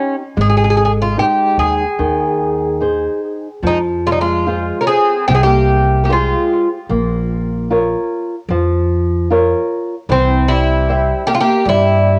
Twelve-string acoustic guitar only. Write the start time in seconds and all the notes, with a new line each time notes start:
3.67 G#3
4.07 G3 G#3
4.21 G#3
4.81 C#4
4.89 C4
5.28 C4
5.37 C4
5.45 A#3
6.04 A#3
6.10 G#3
10.09 E3
10.48 G3
11.28 A#3
11.33 G#3
11.40 A#3
11.65 G3